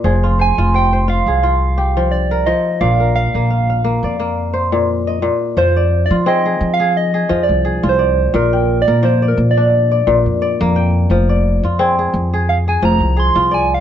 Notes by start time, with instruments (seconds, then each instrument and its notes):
Already playing: kora A#3 C5 D#5
0.04 upright bass F1, kora F3 G#4
0.23 kora F4
0.39 kora C5, soft synth lead G#5
0.58 upright bass F1, kora F4
0.74 kora C5, soft synth lead G5
0.93 kora C5
1.08 kora F4, soft synth lead F5
1.26 upright bass C2, kora G#4
1.43 kora F4
1.78 kora G4
1.97 kora F3
2.11 soft synth lead D5
2.31 kora A#4
2.46 kora F3, soft synth lead D#5
2.81 upright bass A#1, kora A#2 D5, soft synth lead F5
3.00 kora A#4
3.15 kora F5, soft synth lead F5
3.35 upright bass A#1, kora A#3
3.50 kora F5
3.70 kora F5
3.84 kora A#3
4.03 upright bass F2, kora D5
4.20 kora A#3
4.54 kora C5
4.72 kora A#2
5.07 kora D#5
5.22 kora A#2
5.57 upright bass F2, kora F3, soft synth lead C5
5.76 kora D5
6.06 soft synth lead D5
6.10 upright bass F3, kora F4
6.26 kora C4 G#4, soft synth lead D#5
6.45 kora G#4
6.61 upright bass F3
6.74 soft synth lead F5
6.80 kora G#4
6.97 soft synth lead D#5
7.14 kora G#4
7.29 upright bass F2, kora F3
7.43 soft synth lead D5
7.49 upright bass C2
7.65 kora G#4
7.83 upright bass C2, kora F4
7.89 soft synth lead C5
7.99 kora D5
8.34 upright bass A#1, kora A#2, soft synth lead A#4
8.53 kora G5
8.82 soft synth lead D5
8.88 upright bass A#2, kora A#4
9.03 kora F3 D5, soft synth lead C5
9.22 kora D5
9.28 soft synth lead A#4
9.37 upright bass A#2
9.51 soft synth lead D5
9.57 kora D4
9.92 kora D5
10.07 upright bass A#1, kora A#2
10.26 upright bass F2
10.42 kora D5
10.61 upright bass F2, kora A#3
10.76 kora G5
11.10 upright bass F1, kora F3
11.29 kora D5
11.63 upright bass F2, kora F4
11.79 kora C4 G#4
11.99 kora G#4
12.14 upright bass F2
12.33 kora G#4
12.49 soft synth lead F5
12.68 kora G#4, soft synth lead G#5
12.82 upright bass F1, kora F3, soft synth lead A#5
13.00 upright bass C2
13.17 kora G#4, soft synth lead C6
13.35 upright bass C2, kora F4
13.51 kora D5, soft synth lead G#5
13.74 soft synth lead F5